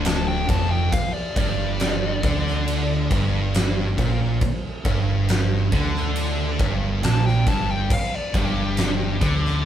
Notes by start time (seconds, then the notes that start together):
Already playing: D1 D2
0.05 A5, snare, ride
0.28 G5
0.49 F1 F2 A5, kick, ride
0.71 G5
0.92 F5, kick, ride
1.13 D5
1.36 G1 G2 D5, kick, ride
1.80 snare, ride
2.23 D2 D3, kick, ride
2.47 snare
2.68 ride
3.11 G1 G2, kick, ride
3.54 snare, ride
3.98 A#1 A#2, kick, ride
4.41 kick, ride
4.85 G1 G2, kick, ride
5.28 snare, ride
5.72 D2 D3, kick, ride
5.96 snare
6.16 ride
6.59 G1 G2, kick, ride
7.03 A#1 A#2 A5, snare, ride
7.26 G5, snare
7.46 G1 G2 A5, kick, ride
7.71 G5
7.90 F5, kick, crash
8.15 D5
8.34 G1 G2 G4, kick, ride
8.77 snare, ride
9.21 D2 D3, kick, ride
9.45 snare